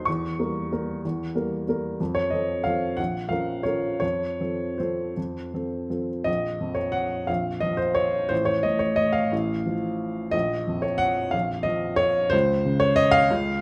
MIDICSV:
0, 0, Header, 1, 2, 480
1, 0, Start_track
1, 0, Key_signature, -5, "minor"
1, 0, Tempo, 322754
1, 106, Time_signature, 3, 2, 24, 8
1, 4913, Tempo, 371287
1, 8753, Tempo, 338792
1, 15473, Tempo, 324149
1, 19317, End_track
2, 0, Start_track
2, 0, Title_t, "Upright piano"
2, 0, Program_c, 0, 0
2, 0, Control_c, 0, 64, 127
2, 81, Note_on_c, 0, 85, 75
2, 115, Note_on_c, 0, 40, 51
2, 130, Control_c, 0, 64, 0
2, 346, Control_c, 0, 64, 127
2, 565, Note_off_c, 0, 40, 0
2, 580, Note_on_c, 0, 55, 37
2, 587, Note_on_c, 0, 58, 35
2, 592, Note_on_c, 0, 70, 42
2, 1021, Note_off_c, 0, 55, 0
2, 1025, Note_off_c, 0, 58, 0
2, 1027, Note_off_c, 0, 70, 0
2, 1071, Note_on_c, 0, 55, 38
2, 1077, Note_on_c, 0, 58, 39
2, 1079, Note_on_c, 0, 70, 45
2, 1500, Note_off_c, 0, 55, 0
2, 1504, Note_off_c, 0, 58, 0
2, 1504, Note_off_c, 0, 70, 0
2, 1556, Note_on_c, 0, 40, 50
2, 1569, Control_c, 0, 64, 0
2, 1805, Control_c, 0, 64, 127
2, 2001, Note_off_c, 0, 40, 0
2, 2008, Note_on_c, 0, 55, 39
2, 2015, Note_on_c, 0, 58, 41
2, 2018, Note_on_c, 0, 70, 42
2, 2438, Note_off_c, 0, 55, 0
2, 2442, Note_off_c, 0, 58, 0
2, 2444, Note_off_c, 0, 70, 0
2, 2499, Note_on_c, 0, 55, 39
2, 2504, Note_on_c, 0, 58, 36
2, 2514, Note_on_c, 0, 70, 43
2, 2929, Note_off_c, 0, 55, 0
2, 2932, Note_off_c, 0, 58, 0
2, 2937, Note_off_c, 0, 70, 0
2, 2958, Note_off_c, 0, 85, 0
2, 2979, Note_on_c, 0, 41, 51
2, 2997, Control_c, 0, 64, 0
2, 3192, Note_on_c, 0, 73, 83
2, 3208, Control_c, 0, 64, 127
2, 3426, Note_on_c, 0, 75, 66
2, 3446, Note_off_c, 0, 41, 0
2, 3447, Note_off_c, 0, 73, 0
2, 3457, Note_on_c, 0, 53, 35
2, 3465, Note_on_c, 0, 60, 38
2, 3471, Note_on_c, 0, 69, 38
2, 3909, Note_off_c, 0, 53, 0
2, 3913, Note_off_c, 0, 60, 0
2, 3916, Note_off_c, 0, 69, 0
2, 3921, Note_on_c, 0, 77, 79
2, 3943, Note_off_c, 0, 75, 0
2, 3962, Note_on_c, 0, 53, 35
2, 3971, Note_on_c, 0, 60, 35
2, 3971, Note_on_c, 0, 69, 41
2, 4394, Note_off_c, 0, 53, 0
2, 4399, Note_off_c, 0, 60, 0
2, 4399, Note_off_c, 0, 69, 0
2, 4411, Note_on_c, 0, 78, 80
2, 4422, Note_off_c, 0, 77, 0
2, 4445, Note_on_c, 0, 34, 45
2, 4467, Control_c, 0, 64, 0
2, 4684, Control_c, 0, 64, 127
2, 4889, Note_on_c, 0, 77, 74
2, 4899, Note_off_c, 0, 78, 0
2, 4901, Note_off_c, 0, 34, 0
2, 4912, Note_on_c, 0, 53, 37
2, 4922, Note_on_c, 0, 61, 35
2, 4929, Note_on_c, 0, 70, 41
2, 5315, Note_off_c, 0, 53, 0
2, 5321, Note_off_c, 0, 61, 0
2, 5325, Note_off_c, 0, 70, 0
2, 5339, Note_on_c, 0, 73, 68
2, 5350, Note_off_c, 0, 77, 0
2, 5363, Note_on_c, 0, 53, 34
2, 5372, Note_on_c, 0, 61, 38
2, 5383, Note_on_c, 0, 70, 40
2, 5791, Note_off_c, 0, 73, 0
2, 5794, Note_off_c, 0, 53, 0
2, 5798, Note_off_c, 0, 61, 0
2, 5804, Note_off_c, 0, 70, 0
2, 5811, Note_on_c, 0, 73, 81
2, 5836, Note_on_c, 0, 41, 43
2, 5865, Control_c, 0, 64, 0
2, 6090, Control_c, 0, 64, 127
2, 6318, Note_off_c, 0, 41, 0
2, 6337, Note_on_c, 0, 53, 34
2, 6338, Note_on_c, 0, 60, 34
2, 6347, Note_on_c, 0, 69, 36
2, 6789, Note_off_c, 0, 53, 0
2, 6790, Note_off_c, 0, 60, 0
2, 6795, Note_off_c, 0, 69, 0
2, 6820, Note_on_c, 0, 72, 53
2, 6824, Note_off_c, 0, 73, 0
2, 6842, Note_on_c, 0, 53, 32
2, 6850, Note_on_c, 0, 60, 37
2, 6851, Note_on_c, 0, 69, 38
2, 7277, Note_off_c, 0, 53, 0
2, 7282, Note_off_c, 0, 60, 0
2, 7282, Note_off_c, 0, 69, 0
2, 7325, Note_on_c, 0, 41, 44
2, 7348, Control_c, 0, 64, 0
2, 7560, Control_c, 0, 64, 127
2, 7777, Note_off_c, 0, 41, 0
2, 7800, Note_on_c, 0, 53, 32
2, 7809, Note_on_c, 0, 60, 32
2, 7813, Note_on_c, 0, 69, 36
2, 8237, Note_off_c, 0, 53, 0
2, 8242, Note_off_c, 0, 60, 0
2, 8244, Note_off_c, 0, 69, 0
2, 8268, Note_on_c, 0, 53, 35
2, 8274, Note_on_c, 0, 60, 34
2, 8276, Note_on_c, 0, 69, 38
2, 8516, Note_off_c, 0, 72, 0
2, 8699, Note_off_c, 0, 53, 0
2, 8702, Note_off_c, 0, 60, 0
2, 8704, Note_off_c, 0, 69, 0
2, 8714, Note_on_c, 0, 75, 84
2, 8743, Note_on_c, 0, 34, 49
2, 8779, Control_c, 0, 64, 0
2, 8991, Control_c, 0, 64, 127
2, 9221, Note_on_c, 0, 41, 42
2, 9422, Note_on_c, 0, 73, 68
2, 9445, Note_off_c, 0, 75, 0
2, 9667, Note_on_c, 0, 78, 86
2, 9688, Note_off_c, 0, 73, 0
2, 10144, Note_off_c, 0, 34, 0
2, 10167, Note_on_c, 0, 77, 70
2, 10172, Note_off_c, 0, 78, 0
2, 10193, Note_on_c, 0, 34, 52
2, 10215, Control_c, 0, 64, 0
2, 10479, Control_c, 0, 64, 127
2, 10639, Note_on_c, 0, 75, 86
2, 10653, Note_off_c, 0, 77, 0
2, 10672, Note_on_c, 0, 53, 41
2, 10761, Note_off_c, 0, 41, 0
2, 10875, Note_on_c, 0, 72, 82
2, 10897, Note_off_c, 0, 75, 0
2, 11122, Note_on_c, 0, 73, 87
2, 11142, Note_off_c, 0, 72, 0
2, 11603, Note_off_c, 0, 34, 0
2, 11606, Note_on_c, 0, 72, 90
2, 11628, Note_off_c, 0, 73, 0
2, 11637, Note_on_c, 0, 33, 57
2, 11649, Note_off_c, 0, 53, 0
2, 11670, Control_c, 0, 64, 0
2, 11840, Note_on_c, 0, 73, 89
2, 11860, Note_off_c, 0, 72, 0
2, 11926, Control_c, 0, 64, 127
2, 12091, Note_on_c, 0, 75, 81
2, 12096, Note_off_c, 0, 73, 0
2, 12116, Note_on_c, 0, 45, 44
2, 12319, Note_on_c, 0, 73, 83
2, 12342, Note_off_c, 0, 75, 0
2, 12558, Note_on_c, 0, 75, 91
2, 12577, Note_off_c, 0, 73, 0
2, 12794, Note_on_c, 0, 77, 85
2, 12814, Note_off_c, 0, 75, 0
2, 13017, Note_off_c, 0, 33, 0
2, 13068, Note_on_c, 0, 33, 58
2, 13089, Control_c, 0, 64, 0
2, 13346, Control_c, 0, 64, 127
2, 13552, Note_on_c, 0, 53, 41
2, 13645, Note_off_c, 0, 45, 0
2, 14470, Note_off_c, 0, 33, 0
2, 14478, Note_on_c, 0, 75, 96
2, 14492, Note_off_c, 0, 77, 0
2, 14503, Note_on_c, 0, 34, 59
2, 14514, Note_off_c, 0, 53, 0
2, 14534, Control_c, 0, 64, 0
2, 14754, Control_c, 0, 64, 127
2, 14985, Note_on_c, 0, 41, 45
2, 15193, Note_on_c, 0, 73, 71
2, 15215, Note_off_c, 0, 75, 0
2, 15418, Note_on_c, 0, 78, 101
2, 15454, Note_off_c, 0, 73, 0
2, 15901, Note_off_c, 0, 34, 0
2, 15908, Note_on_c, 0, 77, 79
2, 15921, Note_off_c, 0, 78, 0
2, 15941, Note_on_c, 0, 34, 56
2, 15975, Control_c, 0, 64, 0
2, 16179, Control_c, 0, 64, 127
2, 16382, Note_on_c, 0, 75, 89
2, 16405, Note_off_c, 0, 77, 0
2, 16420, Note_on_c, 0, 53, 45
2, 16523, Note_off_c, 0, 41, 0
2, 16875, Note_on_c, 0, 73, 101
2, 16903, Note_off_c, 0, 75, 0
2, 17368, Note_off_c, 0, 34, 0
2, 17368, Note_on_c, 0, 72, 103
2, 17391, Note_off_c, 0, 73, 0
2, 17409, Note_on_c, 0, 37, 66
2, 17413, Note_off_c, 0, 53, 0
2, 17444, Control_c, 0, 64, 0
2, 17673, Control_c, 0, 64, 127
2, 17896, Note_on_c, 0, 49, 51
2, 18109, Note_on_c, 0, 73, 102
2, 18115, Note_off_c, 0, 72, 0
2, 18348, Note_on_c, 0, 75, 113
2, 18364, Note_off_c, 0, 73, 0
2, 18579, Note_on_c, 0, 77, 120
2, 18602, Note_off_c, 0, 75, 0
2, 18803, Note_off_c, 0, 37, 0
2, 18861, Note_on_c, 0, 37, 69
2, 18873, Control_c, 0, 64, 0
2, 19137, Control_c, 0, 64, 127
2, 19317, Note_off_c, 0, 37, 0
2, 19317, Note_off_c, 0, 49, 0
2, 19317, Note_off_c, 0, 77, 0
2, 19317, End_track
0, 0, End_of_file